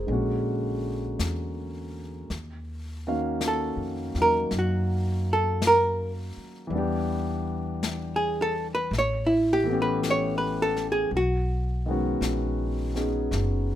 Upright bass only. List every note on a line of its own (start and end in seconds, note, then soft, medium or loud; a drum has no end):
0.08 1.15 A#1 medium
1.19 2.26 E2 medium
2.30 3.73 D#2 medium
3.77 4.11 F2 medium
4.15 4.49 E2 medium
4.51 6.34 F#2 medium
6.37 muted upright bass stroke soft
6.70 8.88 E2 medium
8.91 11.08 A1 medium
11.11 12.17 B1 medium
12.21 13.27 A#1 medium
13.31 13.75 F#1 medium